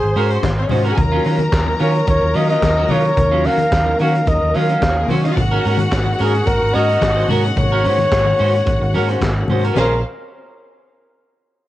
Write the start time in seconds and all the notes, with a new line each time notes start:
Already playing: G#4 C5 C6
0.03 G#1, muted clean electric guitar stroke
0.16 G#2 C#4 F#4 A#4, open hi-hat, muted conga
0.30 C#4 F#4 C5, closed hi-hat
0.43 G#1, muted clean electric guitar stroke, kick, snare, clap, closed hi-hat, muted conga, high conga
0.58 C4 C5, muted clean electric guitar stroke
0.64 C#4 C#5
0.69 G#2 C#4 D#4 F#4 C5 D#5, open hi-hat, muted conga, high conga, low conga
0.78 F4 F5
0.85 C#4 F#4 A#4 F#5, closed hi-hat
0.92 G#4 G#5
0.97 D#2 D#3 F#3 A#3 C#4 F4 A#4 A#5, muted clean electric guitar stroke, kick, closed hi-hat, muted conga, low conga
1.12 F#3 C#4 F4
1.24 D#3 F#3 C#4 F4, open hi-hat, muted conga
1.38 muted clean electric guitar stroke, closed hi-hat, high conga
1.52 D#2, muted clean electric guitar stroke, kick, snare, clap, closed hi-hat, muted conga
1.66 muted clean electric guitar stroke, high conga
1.79 D#3 F#3 C#4 F4 C#5, open hi-hat, muted conga
1.94 muted clean electric guitar stroke, closed hi-hat
2.07 D#2 C#5, muted clean electric guitar stroke, kick, closed hi-hat, high conga
2.22 D#2, muted clean electric guitar stroke
2.34 D#3 F#3 C#4 F4 D#5, open hi-hat, muted conga
2.49 F#3 C#4 F4 D#5, closed hi-hat
2.62 D#2, muted clean electric guitar stroke, kick, snare, clap, closed hi-hat, muted conga, high conga
2.77 F#3 C#4 F#4
2.89 D#3 F#3 C#4 F4 C#5, open hi-hat, muted conga, high conga, low conga
3.04 muted clean electric guitar stroke, closed hi-hat
3.17 D#2 D#4, muted clean electric guitar stroke, kick, closed hi-hat, muted conga, low conga
3.31 F#3 C#4 F4
3.44 D#3 F#3 C#4 F#4 F5, open hi-hat, muted conga
3.58 muted clean electric guitar stroke, closed hi-hat, high conga
3.71 D#2, muted clean electric guitar stroke, kick, snare, clap, closed hi-hat, muted conga
3.86 muted clean electric guitar stroke, high conga
3.99 D#3 F#3 C#4 F#4 F5, open hi-hat, muted conga
4.15 muted clean electric guitar stroke, closed hi-hat
4.26 D#2 D#5, muted clean electric guitar stroke, kick, closed hi-hat, muted conga, high conga
4.42 D#2, muted clean electric guitar stroke
4.54 D#3 F#3 C#4 F4 F5, open hi-hat
4.69 F#3 C#4 F#4, closed hi-hat
4.81 D#2, muted clean electric guitar stroke, kick, snare, clap, closed hi-hat, high conga
4.89 F#3 F#4
4.97 G#3 G#4, muted clean electric guitar stroke
5.03 A#3 A#4
5.08 D#3 F#3 C4 C#4 F#4 C5, open hi-hat, muted conga, high conga, low conga
5.16 C#4 C#5
5.24 F#3 C#4 D#4 F4 D#5, closed hi-hat
5.30 F4 F5
5.36 G#1 G#3 F#4 F#5, muted clean electric guitar stroke, kick, closed hi-hat, low conga
5.51 C#4 F#4 A#4
5.64 G#2 C#4 F#4 A#4, open hi-hat
5.77 muted clean electric guitar stroke, closed hi-hat, high conga
5.91 G#1, muted clean electric guitar stroke, kick, snare, clap, closed hi-hat, muted conga
6.05 muted clean electric guitar stroke, high conga
6.18 G#2 C#4 F#4 G#4 A#4, open hi-hat, muted conga
6.33 muted clean electric guitar stroke, closed hi-hat
6.46 G#1 A#4, muted clean electric guitar stroke, kick, closed hi-hat, muted conga, high conga
6.61 G#1, muted clean electric guitar stroke
6.74 G#2 C#4 F#4 A#4 D#5, open hi-hat
6.89 C#4 F#4 A#4, closed hi-hat
7.01 G#1, muted clean electric guitar stroke, kick, snare, clap, closed hi-hat, muted conga, high conga
7.16 C#4 F#4 C5
7.28 G#2 C#4 F#4 A#4, open hi-hat, muted conga, high conga, low conga
7.44 muted clean electric guitar stroke, closed hi-hat
7.56 G#1 C#5, muted clean electric guitar stroke, kick, closed hi-hat, low conga
7.72 C#4 F#4 A#4
7.84 G#2 C#4 F#4 C5, open hi-hat, muted conga
7.98 muted clean electric guitar stroke, closed hi-hat, high conga
8.11 G#1, muted clean electric guitar stroke, kick, snare, clap, closed hi-hat, muted conga
8.26 muted clean electric guitar stroke, high conga
8.38 G#2 C#4 F#4 C5, open hi-hat, muted conga
8.55 muted clean electric guitar stroke, closed hi-hat
8.66 G#1, muted clean electric guitar stroke, kick, closed hi-hat, muted conga, high conga
8.81 G#1, muted clean electric guitar stroke
8.93 G#2 C#4 F#4 A#4, open hi-hat, muted conga
9.09 C#4 F#4 C5, closed hi-hat
9.21 G#1, muted clean electric guitar stroke, kick, snare, clap, closed hi-hat, muted conga, high conga
9.37 muted clean electric guitar stroke
9.48 G#2 C#4 F#4 C5, open hi-hat, high conga, low conga
9.64 C#4 F#4 A#4, closed hi-hat
9.75 A#1 C#3 G#3 A#3 C4 C#4 F4 G#4 A#4 C5 F5, snare, high conga